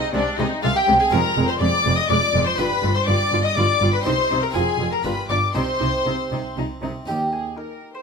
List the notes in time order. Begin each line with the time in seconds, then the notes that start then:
Already playing: C3 C4 D#4 G#4 D#5
0.14 C2 C3 G#3 D4 D5
0.38 C2 C3 G#3 D#4 D#5
0.63 C2 C3 G#3 F4 F5
0.75 G4 G5
0.87 C2 C3 G#3
1.00 G#4 G#5
1.08 G#3 C4 F4 G#4
1.12 F1 F2 A#4 A#5
1.37 F1 F2 G#3
1.48 C5 C6
1.61 F1 F2 G#3 D5 D6
1.85 F1 F2 G#3
1.97 D#5 D#6
2.09 F1 F2 G#3 D5 D6
2.34 F1 F2 G#3
2.46 C5 C6
2.55 G1 G2 D4 F4 G4 B4 B5
2.60 G2
2.83 G1 G2 F4
2.95 C5 C6
3.07 G1 G2 F4 D5 D6
3.32 G1 G2 F4
3.43 D#5 D#6
3.55 G1 G2 F4 D5 D6
3.81 G1 G2 F4
3.93 B4 B5
4.01 C4 D#4 G4 C5 C6
4.06 C2 C3 D#4 C5
4.30 C2 C3 D#4
4.42 A#4 A#5
4.51 C4 F4 G#4
4.55 F1 F2 F4 G#4 G#5
4.79 F1 F2 F4
4.92 A#4 A#5
5.02 G1 G2 F4 G4 B4 B5
5.29 G1 G2 F4 D5 D6
5.53 C2 C3 D#4 G4 C5 C6
5.80 C2 C3 D#4
6.06 C2 C3 D#4
6.31 C2 C3 D#4
6.57 C2 C3 D#4
6.82 C2 C3 D#4
7.06 D#2 D#4 G4
7.33 G#4
7.57 D#4 A#4 G5
7.94 C5